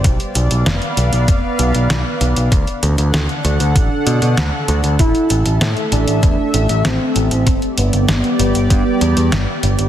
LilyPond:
<<
  \new Staff \with { instrumentName = "Analog synth pad" } { \time 4/4 \key d \dorian \tempo 4 = 97 << { <b b' f''>1 | <d d' fis''>1 | <a e''>1 | <g g' d''>1 | } \\ { d''1 | a'1~ | a'1 | r1 | } >> }
  \new Staff \with { instrumentName = "Soft synth lead" } { \time 4/4 \key d \dorian r1 | r1 | e'4. d'4. c'4~ | c'8 b2.~ b8 | }
  \new Staff \with { instrumentName = "Picked electric bass" } { \clef bass \time 4/4 \key d \dorian b,,16 r16 b,,16 b,,16 f,,16 r16 b,,16 b,,16 f,,16 r16 b,,16 b,,16 b,,16 r16 b,,16 b,,16 | d,16 r16 d,16 d,16 d,16 r16 d,16 d,16 a,,16 r16 b,16 b,16 d,16 r16 d,16 d,16 | a,,16 r16 a,,16 a,,16 a,16 r16 a,,16 a,,16 e,16 r16 a,,16 a,,16 a,,16 r16 a,,16 a,,16 | g,,16 r16 g,,16 g,,16 g,,16 r16 g,,16 g,,16 g,16 r16 e,16 e,16 g,,16 r16 g,,16 g,,16 | }
  \new DrumStaff \with { instrumentName = "Drums" } \drummode { \time 4/4 <hh bd>16 hh16 hh16 hh16 <hh sn>16 hh16 hh16 hh16 <hh bd>8 hh16 hh16 <hh sn>8 hh16 hh16 | <hh bd>16 hh16 hh16 hh16 <hh sn>16 hh16 hh16 hh16 <hh bd>8 hh16 hh16 <hh sn>8 hh16 hh16 | <hh bd>16 hh16 hh16 hh16 <hh sn>16 hh16 hh16 hh16 <hh bd>8 hh16 hh16 <hh sn>8 hh16 hh16 | <hh bd>16 hh16 hh16 hh16 <hh sn>16 hh16 hh16 hh16 <hh bd>8 hh16 hh16 <hh sn>8 hh16 hh16 | }
>>